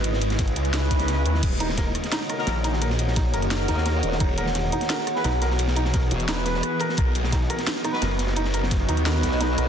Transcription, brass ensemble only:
X:1
M:4/4
L:1/16
Q:1/4=173
K:Ebphr
V:1 name="Brass ensemble"
z8 [DFc]8 | z8 z3 [EGB] z4 | z8 [EGB]8 | z8 z3 [=E^G=B] z4 |
z8 [=E^G=B]8 | z8 z3 [^D^F=B] z4 | z8 [^D^F=B]8 |]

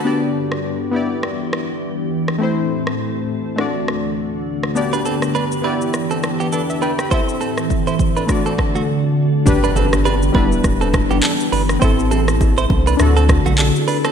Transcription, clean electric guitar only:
X:1
M:4/4
L:1/16
Q:"Swing 16ths" 1/4=102
K:G
V:1 name="Clean electric guitar"
z16 | z16 | z [DB] [CA] z [DB] z [DB] z2 [CA] z [B,G] [DA] z [DB] z | [Ec] z [CA] z2 [Ec] z [DB] z [CA] z [A,F] z4 |
z [DB] [CA] z [DB] z [DB] z2 [CA] z [B,G] [DA] z [DB] z | [Ec] z [CA] z2 [Ec] z [DB] z [CA] z [A,F] [DA] z [DB] [CA] |]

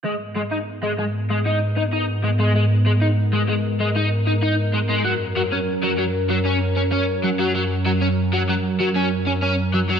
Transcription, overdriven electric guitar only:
X:1
M:4/4
L:1/16
Q:1/4=96
K:G#m
V:1 name="Overdriven electric guitar" clef=bass
G, z G, D z G, G, z G, D z D D z G, G, | G, z G, D z G, G, z G, D z D D z G, G, | F, z F, C z F, F, z F, C z C C z F, F, | F, z F, C z F, F, z F, C z C C z F, F, |]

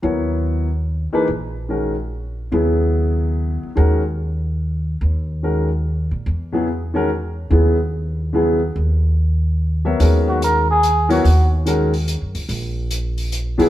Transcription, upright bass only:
X:1
M:3/4
L:1/8
Q:"Swing" 1/4=144
K:Ebphr
V:1 name="Upright bass" clef=bass
E,,4- E,, z | B,,,6 | E,,4- E,, z | E,,6 |
E,,4- E,, B,, | =E,,6 | E,,6 | E,,6 |
E,,6 | E,,4- (3E,, G,, D,, | B,,,4- B,,, B,, |]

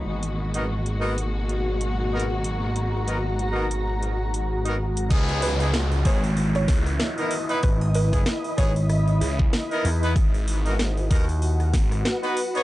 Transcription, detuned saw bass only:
X:1
M:4/4
L:1/8
Q:"Swing 16ths" 1/4=95
K:C#dor
V:1 name="Detuned saw bass" clef=bass
G,,,8- | G,,,8 | C,,2 C,, z2 C,, z2 | z4 z C,, z2 |
G,,,2 G,,, z2 G,,, z2 |]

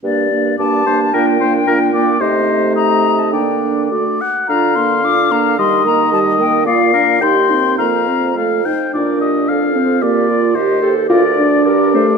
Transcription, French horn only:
X:1
M:2/4
L:1/8
Q:1/4=109
K:Gm
V:1 name="French horn"
B, B, B, B, | B, B, B, B, | A,4 | B,2 A, z |
[K:Bb] D B, D B, | G, B, G, B, | B, D E C | B, C A, E |
D3 C | B,2 z G | F D2 A, |]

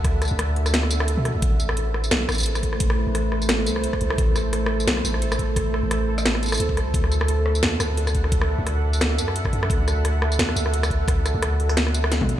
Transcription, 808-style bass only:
X:1
M:4/4
L:1/16
Q:"Swing 16ths" 1/4=174
K:Dmix
V:1 name="808-style bass" clef=bass
D,,3 D,,8- D,,2 B,,2 D,, | A,,,8 B,,,2 A,,,6- | A,,,3 A,,,6- A,,, C,,4 C,,2 | A,,,8 B,,,2 A,,,6- |
A,,,3 A,,,8- A,,, D,,2 C,,2 | D,,8 E,,2 D,,6- | D,,3 D,,6- D,, F,,4 F,,2 | D,,8 E,,2 D,,6- |
D,,3 D,,8- D,,2 B,,2 z |]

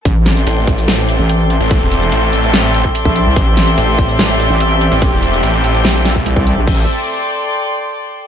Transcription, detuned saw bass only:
X:1
M:4/4
L:1/16
Q:1/4=145
K:Am
V:1 name="Detuned saw bass" clef=bass
z4 A,,,4 A,,,3 z4 A,,,- | A,,, E,,,3 A,,,2 A,,,2 A,,,3 z4 z | z4 A,,,4 A,,,3 z4 A,,,- | A,,, E,,,3 A,,,2 A,,,2 _B,,,4 z4 |
z16 |]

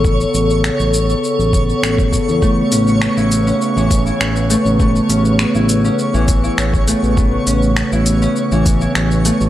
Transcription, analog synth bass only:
X:1
M:4/4
L:1/16
Q:1/4=101
K:A
V:1 name="Analog synth bass" clef=bass
A,,, z A,,,2 z A,,,2 z2 A,,,2 z A,,,2 z E,,- | E,, z A,,,2 z A,,,2 z2 A,,,2 z A,,,2 z A,,,- | A,,, z A,,,2 z A,,,2 z2 A,,,2 z A,,,2 z A,,,- | A,,, z A,,,2 z A,,,2 z2 A,,,2 z A,,,2 z A,,, |]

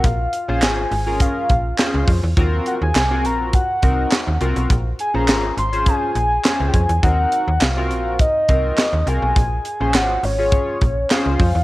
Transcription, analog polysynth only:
X:1
M:4/4
L:1/16
Q:1/4=103
K:Ebdor
V:1 name="Analog polysynth"
z3 [DFAc]2 z2 [DFAB]3 z2 [DFAc]2 z2 | [CFGB]3 z2 [CFGB]3 z2 [CEGB]2 z2 [CFGB]2 | z3 [DFAc]2 z2 [DFAc]3 z2 [DFAc]2 z2 | [CEGB]3 z2 [CFGB]3 z2 [CFGB]2 z2 [CFGB]2 |
z3 [DFAc]2 z2 [DFAd]3 z2 [DFAc]2 z2 |]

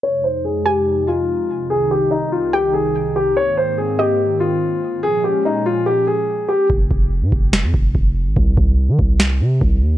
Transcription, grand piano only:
X:1
M:4/4
L:1/8
Q:1/4=144
K:Fm
V:1 name="Grand piano"
d c A G2 F3 | A G E F G A2 G | d c A G2 F3 | A G E F G A2 G |
z8 | z8 |]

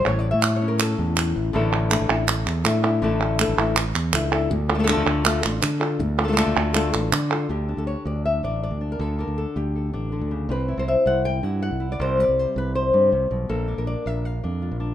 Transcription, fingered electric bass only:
X:1
M:4/4
L:1/16
Q:1/4=161
K:none
V:1 name="Fingered electric bass" clef=bass
A,,,3 A,,6- A,, E,,4 A,,,2 | A,,,4- A,,, A,,, A,,,4 E,,2 A,,4 | A,,,4- A,,, A,,, A,,,4 E,,2 ^C,,4 | D,,4- D,, D,, D,,4 A,,,2 D,4 |
D,,4- D,, D,, D,,4 A,,,2 D,4 | D,,3 D,,2 z D,,4 A,,,3 D,,3 | D,,3 D,,2 z D,,4 A,,,3 D,,3 | C,,3 C,,2 z C,,4 G,,3 C,,3 |
C,,3 C,,2 z C,,4 G,,2 C,,2 B,,,2 | _B,,,3 B,,,2 z B,,,4 F,,3 B,,,3 |]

